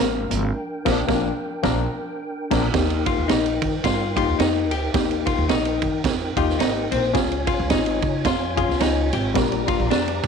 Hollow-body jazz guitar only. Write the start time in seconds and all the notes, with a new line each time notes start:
Already playing: A#3
3.06 F4
3.28 D#4
3.84 F4
4.16 F4
4.39 D#4
4.71 G4
5.26 F4
5.49 D#4
6.37 F4
6.59 D#4
6.91 C4
7.47 F4
7.70 D#4
8.25 F4
8.57 F4
8.80 D#4
9.13 G4
9.68 F4
9.90 D4